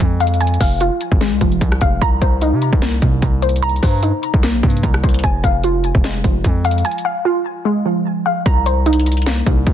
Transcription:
Already playing: synth pluck F3 G#3 F4 F5
0.00 808-style bass F2, kick, closed hi-hat
0.20 synth pluck F5, closed hi-hat
0.27 closed hi-hat
0.34 closed hi-hat
0.41 synth pluck G#5, closed hi-hat
0.47 closed hi-hat
0.54 closed hi-hat
0.61 808-style bass F1, synth pluck F5, kick, open hi-hat
0.80 synth pluck F4, closed hi-hat
1.01 closed hi-hat
1.12 808-style bass G#1, kick
1.21 synth pluck G#3, snare, closed hi-hat
1.32 808-style bass C2
1.41 808-style bass F1, synth pluck F3, kick, closed hi-hat
1.52 closed hi-hat
1.61 808-style bass C2, kick, closed hi-hat
1.72 cross-stick
1.81 808-style bass F1, synth pluck F5, kick, closed hi-hat
2.02 808-style bass C2, synth pluck A#5, kick, closed hi-hat
2.22 808-style bass C2, synth pluck C5, kick, closed hi-hat
2.41 synth pluck D#4, closed hi-hat
2.53 808-style bass C3
2.62 closed hi-hat
2.73 808-style bass C2, kick
2.82 synth pluck A#3, snare, closed hi-hat
3.02 808-style bass C2, synth pluck C3, kick, closed hi-hat
3.22 808-style bass C2, kick, closed hi-hat
3.42 synth pluck C5, closed hi-hat
3.49 closed hi-hat
3.56 closed hi-hat
3.62 synth pluck A#5, closed hi-hat
3.69 closed hi-hat
3.76 closed hi-hat
3.82 808-style bass G2, synth pluck C5, kick, cross-stick, open hi-hat
4.03 synth pluck D#4, closed hi-hat
4.23 closed hi-hat
4.34 808-style bass C2, kick
4.43 synth pluck A#3, snare, closed hi-hat
4.54 808-style bass A#1
4.63 808-style bass G2, synth pluck C3, kick, closed hi-hat
4.70 closed hi-hat
4.77 closed hi-hat
4.83 808-style bass C2, kick, closed hi-hat
4.94 cross-stick
5.04 808-style bass C2, synth pluck C5, kick, closed hi-hat
5.09 closed hi-hat
5.14 closed hi-hat
5.19 closed hi-hat
5.24 808-style bass F1, synth pluck G#5, kick, closed hi-hat
5.44 808-style bass F1, synth pluck F5, kick, closed hi-hat
5.64 synth pluck F4, closed hi-hat
5.84 closed hi-hat
5.95 808-style bass F1, kick
6.04 synth pluck G#3, snare, closed hi-hat
6.24 808-style bass F1, synth pluck F3, kick, closed hi-hat
6.44 808-style bass F2, kick, closed hi-hat
6.65 synth pluck F5, closed hi-hat
6.71 closed hi-hat
6.78 closed hi-hat
6.85 synth pluck G#5, closed hi-hat
6.91 closed hi-hat
6.98 closed hi-hat
7.05 synth pluck F5
7.25 synth pluck F4
7.65 synth pluck G#3
7.86 synth pluck F3
8.26 synth pluck F5
8.46 808-style bass C2, synth pluck A#5, kick, closed hi-hat
8.66 synth pluck C5, closed hi-hat
8.86 synth pluck D#4, closed hi-hat
8.93 closed hi-hat
9.00 closed hi-hat
9.06 closed hi-hat
9.12 closed hi-hat
9.17 closed hi-hat
9.22 closed hi-hat
9.26 synth pluck A#3, snare, closed hi-hat
9.46 808-style bass C2, synth pluck C3, kick, closed hi-hat
9.67 808-style bass C2, kick, closed hi-hat

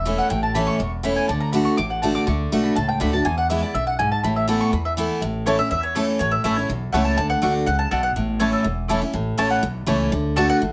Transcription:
Already playing: upright bass E1, steel-string acoustic guitar E2, mandolin E5
0.05 steel-string acoustic guitar E3 A3 C#4 E4
0.18 mandolin F#5
0.30 upright bass A1, steel-string acoustic guitar A2, mandolin G5
0.43 mandolin A5
0.55 steel-string acoustic guitar E3 A3 C#4 E4, mandolin B5
0.67 mandolin C#6
0.80 upright bass E1, steel-string acoustic guitar E2
1.03 steel-string acoustic guitar E3 A3 C#4 E4, mandolin B5
1.16 mandolin G#5
1.28 upright bass D2, steel-string acoustic guitar D3, mandolin A5
1.40 mandolin A#5
1.52 steel-string acoustic guitar D3 A3 D4 F#4, mandolin B5
1.65 mandolin C#6
1.77 upright bass A1, steel-string acoustic guitar A2, mandolin D6
1.90 mandolin F#5
2.02 steel-string acoustic guitar D3 A3 D4 F#4, mandolin A5
2.15 mandolin D6
2.27 upright bass D2, steel-string acoustic guitar D3, mandolin C#6
2.52 upright bass B1, steel-string acoustic guitar D3 A3 D4 F#4
2.64 mandolin B5
2.75 upright bass C#2, steel-string acoustic guitar A2, mandolin A5
2.89 mandolin G5
3.00 upright bass D2, steel-string acoustic guitar D3 A3 D4 F#4, mandolin B5
3.13 steel-string acoustic guitar D4 F#4, mandolin A5
3.25 steel-string acoustic guitar E2, upright bass E2, mandolin G#5
3.38 mandolin F#5
3.50 steel-string acoustic guitar E3 G#3 B3 E4, mandolin E5
3.62 steel-string acoustic guitar B3 E4, mandolin D5
3.74 upright bass B1, steel-string acoustic guitar F#2, mandolin E5
3.87 mandolin F#5
3.99 steel-string acoustic guitar G#2, mandolin G#5
4.12 mandolin A5
4.24 upright bass A1, steel-string acoustic guitar A2, mandolin B5
4.36 mandolin E5
4.48 steel-string acoustic guitar E3 A3 B3 E4, mandolin A5
4.61 mandolin C#6
4.73 upright bass E2, steel-string acoustic guitar E2, mandolin B5
4.85 mandolin E5
4.97 steel-string acoustic guitar E3 A3 B3 E4
5.21 upright bass A1, steel-string acoustic guitar A2
5.46 steel-string acoustic guitar E3 A3 C#4 E4, mandolin A3 E4 C#5 A5
5.59 steel-string acoustic guitar C#4 E4, mandolin E5
5.71 steel-string acoustic guitar E2, upright bass E2, mandolin E5
5.83 mandolin C#5
5.95 steel-string acoustic guitar E3 A3 C#4 E4, mandolin A3 E4 C#5 A5
6.19 upright bass A1, steel-string acoustic guitar A2, mandolin C#5
6.32 mandolin E5
6.44 upright bass A1, steel-string acoustic guitar E3 A3 C#4 E4, mandolin A3 E4 C#5 E5 A5
6.56 steel-string acoustic guitar C#4 E4, mandolin C#5
6.69 upright bass B1, steel-string acoustic guitar E2
6.92 upright bass C#2, steel-string acoustic guitar E3 A3 C#4 E4, mandolin A3 E4 C#5 F#5 A5
7.05 mandolin A5
7.17 upright bass D2, steel-string acoustic guitar D3, mandolin A5
7.30 mandolin F#5
7.42 upright bass D2, steel-string acoustic guitar D3 A3 D4 F#4, mandolin A3 F#4 D5 F#5
7.66 upright bass C#2, steel-string acoustic guitar C#3, mandolin F#5
7.79 mandolin A5
7.91 upright bass B1, steel-string acoustic guitar B2, mandolin A3 F#4 D5 F#5 A5
8.03 mandolin F#5
8.16 upright bass A1, steel-string acoustic guitar A2
8.40 steel-string acoustic guitar E3 A3 C#4 E4, mandolin A3 E4 C#5 A5
8.53 mandolin A4
8.64 upright bass E1, steel-string acoustic guitar E2
8.88 steel-string acoustic guitar E3 A3 C#4 E4, mandolin A3 E4 C#5 A5
9.02 steel-string acoustic guitar C#4 E4
9.13 upright bass A1, steel-string acoustic guitar A2
9.38 upright bass A1, steel-string acoustic guitar E3 A3 C#4 E4, mandolin A3 E4 C#5 A5
9.50 mandolin F#5
9.63 upright bass B1, steel-string acoustic guitar E2
9.86 upright bass C#2, steel-string acoustic guitar E3 A3 C#4 E4, mandolin A3 E4 C#5 A5
10.12 upright bass D2, steel-string acoustic guitar D3
10.36 steel-string acoustic guitar D3 A3 D4 F#4, mandolin A3 F#4 D5 F#5 A5
10.49 mandolin F#5
10.61 upright bass A1, steel-string acoustic guitar A2

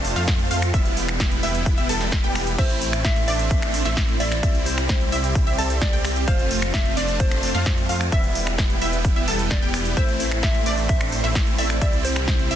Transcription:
Already playing: detuned saw bass F1, supersaw synth A3 C4 D4 F4 C5 A5, synth pluck D5
0.05 open hi-hat
0.16 detuned saw bass F2, supersaw synth A3 C4 F4, synth pluck F5, snare, closed hi-hat
0.28 kick, snare, closed hi-hat
0.39 closed hi-hat
0.51 detuned saw bass F2, supersaw synth A3 C4 F4, synth pluck F5, open hi-hat
0.62 finger snap, closed hi-hat
0.74 detuned saw bass E1, supersaw synth G3 B3 E4 B4 G5, synth pluck E5, kick, closed hi-hat
0.85 closed hi-hat
0.97 open hi-hat
1.08 finger snap, closed hi-hat
1.20 kick, snare, closed hi-hat
1.32 closed hi-hat
1.43 detuned saw bass E1, supersaw synth G3 B3 E4, synth pluck E5, open hi-hat
1.55 closed hi-hat
1.66 kick, closed hi-hat
1.78 detuned saw bass E1, supersaw synth G3 B3 E4, synth pluck E5, closed hi-hat
1.89 detuned saw bass E1, supersaw synth G3 B3 A4, synth pluck A5, open hi-hat
2.01 snare, closed hi-hat
2.12 kick, snare, closed hi-hat
2.24 detuned saw bass E1, supersaw synth G3 B3 G4, synth pluck G5, closed hi-hat
2.35 finger snap, open hi-hat
2.47 closed hi-hat
2.58 detuned saw bass A1, supersaw synth A3 C4 E4 C5, soft synth lead C5, synth pluck E5, kick, closed hi-hat, crash
2.70 closed hi-hat
2.82 open hi-hat
2.93 finger snap, closed hi-hat
3.05 soft synth lead E5, kick, snare, closed hi-hat
3.16 closed hi-hat
3.28 detuned saw bass A1, supersaw synth A3 C4 D4, synth pluck D5, soft synth lead E5, open hi-hat
3.39 closed hi-hat
3.51 kick, closed hi-hat
3.62 finger snap, closed hi-hat
3.74 open hi-hat
3.85 detuned saw bass A1, supersaw synth A3 C4 E4, synth pluck E5, snare, closed hi-hat
3.97 kick, snare, closed hi-hat
4.09 closed hi-hat
4.20 detuned saw bass A1, supersaw synth A3 C4 E4, soft synth lead D5, synth pluck E5, open hi-hat
4.32 finger snap, closed hi-hat
4.43 detuned saw bass C2, supersaw synth G3 C4 E4 G4 E5, synth pluck E5, kick, closed hi-hat
4.55 closed hi-hat
4.66 soft synth lead C5, open hi-hat
4.78 finger snap, closed hi-hat
4.89 kick, snare, closed hi-hat
5.01 closed hi-hat
5.12 detuned saw bass C2, supersaw synth G3 C4 E4, synth pluck E5, open hi-hat
5.24 closed hi-hat
5.35 kick, closed hi-hat
5.47 detuned saw bass C2, supersaw synth G3 C4 E4, synth pluck E5, closed hi-hat
5.58 detuned saw bass C2, supersaw synth G3 C4 A4, synth pluck A5, open hi-hat
5.70 closed hi-hat
5.81 soft synth lead D5, kick, snare, closed hi-hat
5.93 detuned saw bass C2, supersaw synth G3 C4 G4, synth pluck G5, closed hi-hat
6.05 finger snap, open hi-hat
6.16 closed hi-hat
6.28 detuned saw bass F1, supersaw synth A3 C4 F4 C5 A5, soft synth lead C5, synth pluck F5, kick, closed hi-hat
6.39 closed hi-hat
6.51 open hi-hat
6.62 finger snap, closed hi-hat
6.74 soft synth lead E5, kick, snare, closed hi-hat
6.85 closed hi-hat
6.97 detuned saw bass F1, supersaw synth A3 C4 D4, soft synth lead D5, synth pluck D5, open hi-hat
7.08 closed hi-hat
7.20 soft synth lead C5, kick, closed hi-hat
7.31 finger snap, closed hi-hat
7.43 open hi-hat
7.55 detuned saw bass F2, supersaw synth A3 C4 F4, synth pluck F5, snare, closed hi-hat
7.66 kick, snare, closed hi-hat
7.78 closed hi-hat
7.89 detuned saw bass F2, supersaw synth A3 C4 F4, synth pluck F5, open hi-hat
8.01 finger snap, closed hi-hat
8.12 detuned saw bass E1, supersaw synth G3 B3 E4 B4 G5, synth pluck E5, soft synth lead E5, kick, closed hi-hat
8.24 closed hi-hat
8.35 open hi-hat
8.47 finger snap, closed hi-hat
8.58 kick, snare, closed hi-hat
8.70 closed hi-hat
8.81 detuned saw bass E1, supersaw synth G3 B3 E4, synth pluck E5, open hi-hat
8.93 closed hi-hat
9.05 kick, closed hi-hat
9.16 detuned saw bass E1, supersaw synth G3 B3 E4, synth pluck E5, closed hi-hat
9.28 detuned saw bass E1, supersaw synth G3 B3 A4, synth pluck A5, open hi-hat
9.39 closed hi-hat
9.51 soft synth lead D5, kick, snare, closed hi-hat
9.62 detuned saw bass E1, supersaw synth G3 B3 G4, synth pluck G5, closed hi-hat
9.74 finger snap, open hi-hat
9.85 closed hi-hat
9.97 detuned saw bass A1, supersaw synth A3 C4 E4 C5, soft synth lead C5, synth pluck E5, kick, closed hi-hat
10.08 closed hi-hat
10.20 open hi-hat
10.31 finger snap, closed hi-hat
10.43 soft synth lead E5, kick, snare, closed hi-hat
10.55 closed hi-hat
10.66 detuned saw bass A1, supersaw synth A3 C4 D4, synth pluck D5, open hi-hat
10.78 closed hi-hat
10.89 soft synth lead E5, kick, closed hi-hat
11.01 finger snap, closed hi-hat
11.12 open hi-hat
11.24 detuned saw bass A1, supersaw synth A3 C4 E4, synth pluck E5, snare, closed hi-hat
11.35 kick, snare, closed hi-hat
11.47 closed hi-hat
11.58 detuned saw bass A1, supersaw synth A3 C4 E4, soft synth lead D5, synth pluck E5, open hi-hat
11.70 finger snap, closed hi-hat
11.81 detuned saw bass C2, supersaw synth G3 C4 E4 G4 E5, synth pluck E5, kick, closed hi-hat
11.93 closed hi-hat
12.05 soft synth lead C5, open hi-hat
12.16 finger snap, closed hi-hat
12.28 kick, snare, closed hi-hat
12.39 closed hi-hat
12.51 detuned saw bass C2, supersaw synth G3 C4 E4, synth pluck E5, open hi-hat

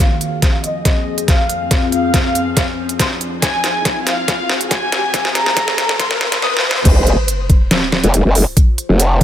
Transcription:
0.00 ambient pad F2 F3 C4 G#4, violin section F5, riser
0.21 closed hi-hat
0.42 kick, snare, closed hi-hat
0.64 violin section D#5, closed hi-hat
0.85 kick, snare, closed hi-hat
1.18 closed hi-hat
1.28 violin section F5, kick, snare, closed hi-hat
1.50 closed hi-hat
1.71 kick, snare, closed hi-hat
1.92 violin section F5, closed hi-hat
2.14 kick, snare, closed hi-hat
2.35 closed hi-hat
2.57 violin section F5, kick, snare, closed hi-hat
2.89 closed hi-hat
3.00 violin section C5, kick, snare, closed hi-hat
3.21 closed hi-hat
3.42 violin section G#5, kick, snare, closed hi-hat
3.64 snare, closed hi-hat
3.85 kick, snare, closed hi-hat
4.07 violin section F5, snare, closed hi-hat
4.28 kick, snare, closed hi-hat
4.50 snare
4.61 closed hi-hat
4.71 violin section G#5, kick, snare, closed hi-hat
4.92 snare, closed hi-hat
5.14 kick, snare, closed hi-hat
5.25 snare
5.35 violin section A#5, snare, closed hi-hat
5.46 snare
5.57 kick, snare, closed hi-hat
5.68 snare
5.78 snare, closed hi-hat
5.89 snare
6.00 violin section C6, kick, snare, closed hi-hat
6.11 snare
6.21 snare
6.32 snare, closed hi-hat
6.42 violin section D#6, snare
6.57 snare
6.71 snare
6.85 wobble bass F1, ambient pad F3 F4 G#4 C5, kick, closed hi-hat, crash, sub drop
7.07 closed hi-hat
7.28 closed hi-hat
7.50 kick, closed hi-hat
7.71 snare, closed hi-hat
7.92 snare
8.04 wobble bass F1, closed hi-hat
8.14 closed hi-hat
8.25 wobble bass F#1
8.35 open hi-hat
8.57 kick, closed hi-hat
8.78 closed hi-hat
8.89 wobble bass F1
9.00 closed hi-hat

